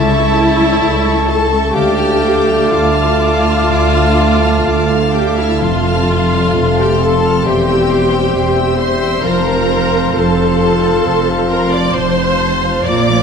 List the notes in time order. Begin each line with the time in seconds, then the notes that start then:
Already playing: C#2 C#3 A3 E4 A4 C#5 E5 A5 C#6
0.11 C#4 E5 C#6
0.35 A3 C#5 A5
0.57 G3 E5 C#6
0.80 C#2 A3 C#5 A5
1.04 E4 E5 C#6
1.26 C#4 A4 C#5 A5
1.50 E4 E5 C#6
1.74 D2 D3 A3 G4 F5 G5 A5 D6
1.98 D4 A5 F6
2.23 A3 F5 D6
2.48 G3 A5 F6
2.70 D2 A3 F4 F5 D6
2.93 A4 A5 F6
3.18 D4 F5 D6
3.44 A4 A5 F6
3.69 D2 D3 F5 D6
3.93 D4 A5 F6
4.18 A3 F5 D6
4.42 G3 A5 F6
4.65 D2 A3 F5 D6
4.89 A4 A5 F6
5.13 D4 G4 F5 G5 D6
5.37 E4 A4 E5 A5 F6
5.60 F1 F2 F3 C4 F4 A4 F5 C6
5.84 F4 A5 F6
6.08 A3 F5 C6
6.32 G3 A5 F6
6.55 F1 F2 A3 F5 C6
6.78 G4 A4 G5 A5 F6
7.00 F4 A4 F5 A5 C6
7.23 A4 A5 F6
7.45 E1 E2 E3 G3 G4 C5 E5 G5 C6
7.68 E4 G5 E6
7.91 C4 E5 C6
8.13 A#3 G5 E6
8.35 E1 E2 C4 E5 C6
8.57 G4 G5 E6
8.79 E4 C5 E5 C6
9.01 G4 G5 E6
9.23 F1 F2 F3 C4 F4 A#4 F5 A5 A#5 C6
9.46 F5 A5
9.68 F4 A5 C6
9.90 F5 A5
10.14 F1 F2 F4 A4 A5 C6
10.37 C5 F5 A5
10.59 C4 A5 C6
10.83 C5 F5 A5
11.04 F1 F2 F3 A5 C6
11.28 C4 F5 A5
11.50 F4 A#4 A5 A#5 C6
11.72 E4 D5 F5 A5 D6
11.94 F1 F2 F4 C5 A5 C6
12.18 C5 F5 A5
12.40 C4 A5 C6
12.63 C5 F5 A5
12.85 A#1 A#2 F3 A#3 F4 D5 F5 A#5 D6
13.08 F3 F5 D6